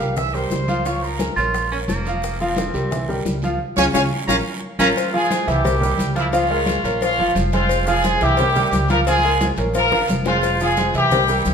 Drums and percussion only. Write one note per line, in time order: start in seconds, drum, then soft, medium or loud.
0.00 high bongo soft
0.00 short guiro medium
0.00 maracas soft
0.16 high bongo medium
0.16 high conga soft
0.16 low conga medium
0.16 long guiro medium
0.16 maracas medium
0.34 high bongo soft
0.34 high conga soft
0.34 maracas soft
0.50 high bongo soft
0.50 low bongo medium
0.50 high conga medium
0.50 short guiro medium
0.50 maracas medium
0.68 high conga medium
0.68 short guiro medium
0.68 maracas soft
0.84 high bongo medium
0.84 high conga soft
0.84 long guiro medium
0.84 maracas medium
1.02 high conga soft
1.02 maracas soft
1.19 high bongo medium
1.19 high conga medium
1.19 short guiro medium
1.19 maracas medium
1.37 high bongo soft
1.37 high conga soft
1.37 short guiro medium
1.37 maracas soft
1.54 high bongo medium
1.54 high conga soft
1.54 long guiro medium
1.54 maracas medium
1.71 high bongo soft
1.71 high conga soft
1.71 maracas soft
1.88 high bongo soft
1.88 low bongo medium
1.88 high conga medium
1.88 short guiro medium
1.88 maracas medium
2.05 short guiro medium
2.05 maracas soft
2.22 high bongo medium
2.22 high conga soft
2.22 long guiro medium
2.22 maracas medium
2.40 high conga soft
2.40 maracas soft
2.56 high bongo medium
2.56 high conga loud
2.56 short guiro medium
2.56 maracas medium
2.74 high bongo soft
2.74 high conga soft
2.74 short guiro medium
2.74 maracas soft
2.91 high bongo medium
2.91 high conga soft
2.91 low conga medium
2.91 long guiro medium
2.91 maracas medium
3.09 high bongo soft
3.09 high conga soft
3.09 low conga medium
3.09 maracas soft
3.25 high bongo soft
3.25 low bongo medium
3.25 high conga medium
3.25 short guiro medium
3.25 maracas medium
3.42 high conga medium
3.42 short guiro medium
3.42 maracas soft
3.76 low bongo loud
3.76 high conga loud
3.76 long guiro medium
3.76 maracas medium
3.93 low bongo loud
3.93 high conga loud
3.93 long guiro loud
3.93 maracas loud
4.28 low bongo medium
4.28 high conga medium
4.28 maracas loud
4.79 low bongo loud
4.79 high conga medium
4.79 long guiro loud
4.79 maracas loud
4.96 cowbell medium
4.96 high conga soft
4.96 long guiro medium
4.96 maracas medium
5.13 high conga soft
5.31 cowbell medium
5.31 high conga loud
5.31 short guiro medium
5.31 maracas medium
5.48 cowbell medium
5.48 high conga soft
5.48 short guiro medium
5.48 maracas soft
5.64 cowbell loud
5.64 high conga soft
5.64 low conga medium
5.64 long guiro medium
5.64 maracas medium
5.81 high conga soft
5.81 low conga medium
5.81 maracas medium
5.98 cowbell medium
5.98 high conga medium
5.98 short guiro medium
5.98 maracas medium
6.16 cowbell medium
6.16 short guiro medium
6.16 maracas soft
6.33 cowbell loud
6.33 high conga soft
6.33 long guiro medium
6.33 maracas medium
6.50 high conga soft
6.66 cowbell medium
6.66 high conga medium
6.66 short guiro medium
6.66 maracas medium
6.84 cowbell medium
6.84 high conga soft
6.84 short guiro medium
6.84 maracas soft
7.01 cowbell loud
7.01 high conga soft
7.01 long guiro medium
7.01 maracas medium
7.19 high conga soft
7.35 cowbell medium
7.35 high conga loud
7.35 short guiro medium
7.35 maracas medium
7.52 cowbell medium
7.52 high conga medium
7.52 short guiro medium
7.52 maracas soft
7.69 cowbell loud
7.69 high conga soft
7.69 long guiro medium
7.69 maracas medium
7.87 high conga soft
7.87 maracas medium
8.03 cowbell medium
8.03 high conga medium
8.03 short guiro medium
8.03 maracas medium
8.21 cowbell medium
8.21 high conga soft
8.21 short guiro medium
8.21 maracas soft
8.37 cowbell loud
8.37 high conga soft
8.37 low conga medium
8.37 long guiro medium
8.37 maracas medium
8.56 high conga soft
8.56 low conga medium
8.56 maracas medium
8.71 cowbell medium
8.71 high conga medium
8.71 short guiro medium
8.71 maracas medium
8.88 cowbell medium
8.88 high conga medium
8.88 short guiro medium
8.88 maracas soft
9.05 cowbell loud
9.05 high conga soft
9.05 long guiro medium
9.05 maracas medium
9.39 cowbell medium
9.39 high conga loud
9.39 short guiro medium
9.39 maracas medium
9.56 cowbell medium
9.56 high conga soft
9.56 short guiro medium
9.56 maracas soft
9.74 cowbell loud
9.74 high conga soft
9.74 long guiro medium
9.74 maracas medium
9.92 high bongo medium
9.92 high conga soft
10.08 cowbell medium
10.08 high conga loud
10.08 short guiro medium
10.08 maracas medium
10.25 cowbell medium
10.25 low bongo medium
10.25 high conga medium
10.25 short guiro medium
10.25 maracas soft
10.42 cowbell loud
10.42 high conga soft
10.42 long guiro medium
10.42 maracas medium
10.60 high conga soft
10.60 maracas medium
10.77 cowbell medium
10.77 high conga loud
10.77 short guiro medium
10.77 maracas medium
10.94 cowbell medium
10.94 high conga soft
10.94 short guiro medium
10.94 maracas soft
11.10 cowbell loud
11.10 high conga soft
11.10 low conga medium
11.10 long guiro medium
11.10 maracas medium
11.28 high conga soft
11.28 maracas medium
11.45 cowbell medium
11.45 high conga loud
11.45 short guiro medium
11.45 maracas medium